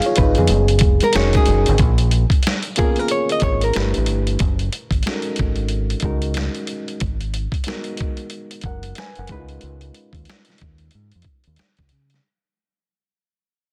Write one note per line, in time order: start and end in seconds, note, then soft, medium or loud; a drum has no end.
0.00 0.38 B3 loud
0.00 0.18 D#4 medium
0.00 0.06 F4 medium
0.00 0.38 G#4 medium
0.00 0.17 B4 loud
0.00 0.51 F5 medium
0.00 closed hi-hat medium
0.06 0.17 F4 soft
0.06 0.17 C#5 medium
0.16 0.35 G#1 medium
0.16 0.37 D#4 medium
0.16 0.36 B4 medium
0.16 kick medium
0.16 closed hi-hat medium
0.16 muted conga soft
0.35 0.48 F2 medium
0.35 0.68 B3 soft
0.35 0.68 G#4 medium
0.35 closed hi-hat soft
0.35 low conga medium
0.47 0.82 F#1 loud
0.47 closed hi-hat medium
0.47 muted conga soft
0.47 high conga medium
0.68 closed hi-hat medium
0.79 0.99 F1 medium
0.79 kick medium
0.79 closed hi-hat medium
0.79 high conga medium
1.00 1.14 A#4 medium
1.00 closed hi-hat medium
1.00 high conga medium
1.13 1.32 F1 loud
1.13 1.40 C#4 medium
1.13 1.40 D#4 medium
1.13 1.40 F#4 medium
1.13 1.41 G#4 medium
1.13 1.40 A#4 medium
1.13 1.35 C#5 medium
1.13 finger snap medium
1.13 snare loud
1.13 closed hi-hat medium
1.33 1.78 G#4 medium
1.33 kick medium
1.33 closed hi-hat soft
1.33 high conga medium
1.46 1.65 F#1 medium
1.46 closed hi-hat medium
1.46 muted conga soft
1.66 1.78 G#1 medium
1.66 closed hi-hat medium
1.66 low conga medium
1.78 2.24 A#1 loud
1.78 kick loud
1.78 closed hi-hat medium
1.98 closed hi-hat soft
2.11 closed hi-hat medium
2.30 kick medium
2.30 closed hi-hat soft
2.43 closed hi-hat medium
2.47 finger snap medium
2.47 snare loud
2.63 closed hi-hat medium
2.76 3.26 A#3 medium
2.76 2.86 B3 medium
2.76 3.27 F4 medium
2.76 3.27 G#4 medium
2.76 2.99 G#4 medium
2.76 3.27 A#4 medium
2.76 kick medium
2.76 closed hi-hat medium
2.84 3.30 C#4 medium
2.96 3.10 A#4 medium
2.96 closed hi-hat soft
3.08 3.30 C#5 medium
3.08 closed hi-hat medium
3.29 3.43 D#5 medium
3.29 closed hi-hat soft
3.40 3.70 G#1 medium
3.40 3.62 C#5 medium
3.40 kick medium
3.40 closed hi-hat medium
3.61 3.94 A#4 medium
3.61 closed hi-hat soft
3.73 3.93 G1 medium
3.73 4.24 A3 medium
3.73 4.24 D4 medium
3.73 4.25 E4 medium
3.73 4.25 G4 medium
3.73 4.25 B4 medium
3.73 finger snap medium
3.73 snare medium
3.73 closed hi-hat medium
3.94 4.09 A1 medium
3.94 closed hi-hat soft
4.06 4.36 G1 medium
4.06 closed hi-hat medium
4.27 closed hi-hat soft
4.39 4.68 F#1 loud
4.39 kick loud
4.39 closed hi-hat medium
4.59 closed hi-hat soft
4.72 closed hi-hat medium
4.91 5.02 G#1 medium
4.91 kick medium
4.91 closed hi-hat soft
5.03 5.99 G#3 medium
5.03 closed hi-hat medium
5.07 5.99 C#4 medium
5.07 5.99 D#4 medium
5.07 5.99 F#4 medium
5.07 5.15 A4 medium
5.07 finger snap medium
5.07 snare loud
5.14 6.03 A#4 medium
5.22 closed hi-hat soft
5.36 kick medium
5.36 closed hi-hat medium
5.40 5.94 G#1 medium
5.56 closed hi-hat soft
5.68 closed hi-hat medium
5.90 closed hi-hat soft
6.00 6.48 C#2 medium
6.00 6.96 G#3 medium
6.00 6.96 C#4 medium
6.00 kick medium
6.00 closed hi-hat medium
6.04 6.97 D#4 medium
6.04 6.97 F#4 medium
6.04 6.97 A#4 medium
6.22 closed hi-hat soft
6.34 finger snap medium
6.34 snare medium
6.34 closed hi-hat medium
6.55 closed hi-hat soft
6.67 closed hi-hat medium
6.88 closed hi-hat soft
7.00 7.46 G#1 loud
7.00 kick loud
7.00 closed hi-hat medium
7.21 closed hi-hat soft
7.34 closed hi-hat medium
7.52 kick medium
7.52 closed hi-hat soft
7.64 7.92 G#3 medium
7.64 7.92 B3 medium
7.64 7.92 D#4 medium
7.64 closed hi-hat medium
7.68 7.92 F#4 medium
7.68 7.93 A#4 medium
7.68 finger snap medium
7.68 snare loud
7.84 closed hi-hat medium
7.97 kick medium
7.97 closed hi-hat medium
8.17 closed hi-hat soft
8.30 closed hi-hat medium
8.51 closed hi-hat soft
8.61 8.91 F#1 medium
8.61 kick medium
8.61 closed hi-hat medium
8.66 8.96 A#4 soft
8.66 8.96 F#5 soft
8.83 closed hi-hat soft
8.95 9.18 G#5 medium
8.95 finger snap medium
8.95 snare loud
8.95 closed hi-hat medium
9.00 9.18 B4 medium
9.15 9.28 F#1 medium
9.15 9.49 A#4 soft
9.15 9.49 F#5 medium
9.15 closed hi-hat soft
9.27 9.57 C#2 medium
9.27 10.46 G#3 medium
9.27 10.46 C#4 medium
9.27 10.47 D#4 medium
9.27 kick medium
9.27 closed hi-hat medium
9.32 9.39 E4 medium
9.32 10.47 B4 medium
9.38 10.50 F4 medium
9.49 closed hi-hat soft
9.61 9.90 C#2 medium
9.61 closed hi-hat medium
9.81 closed hi-hat soft
9.94 closed hi-hat medium
10.13 10.24 D#2 medium
10.13 kick medium
10.13 closed hi-hat soft
10.25 closed hi-hat medium
10.30 finger snap medium
10.30 snare medium
10.45 closed hi-hat soft
10.50 snare soft
10.58 kick medium
10.58 closed hi-hat medium
10.62 10.88 D#2 medium
10.78 closed hi-hat soft
10.91 11.11 G#2 medium
10.91 closed hi-hat medium
11.12 11.24 F2 medium
11.12 closed hi-hat soft
11.22 kick medium
11.22 closed hi-hat medium
11.44 11.56 D#2 medium
11.44 closed hi-hat soft
11.56 finger snap medium
11.56 snare medium
11.56 closed hi-hat medium
11.77 11.89 C#2 medium
11.77 kick medium
11.77 closed hi-hat soft
11.89 12.18 C#3 medium
11.89 closed hi-hat medium
12.10 closed hi-hat soft
12.14 snare soft